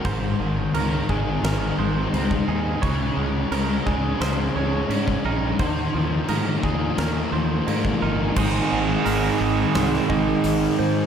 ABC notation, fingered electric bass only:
X:1
M:4/4
L:1/8
Q:1/4=87
K:Ebmix
V:1 name="Fingered electric bass" clef=bass
A,,, A,,, D,, A,,, A,,, A,,, D,, E,, | D,, D,, D,, D,, D,, D,, A,, B,,, | E,, E,, A,, E,, E,, E,, A,, G,,, | [K:Ab] A,,, A,,, A,,, A,,, C,, A,,, A,,, A,, |]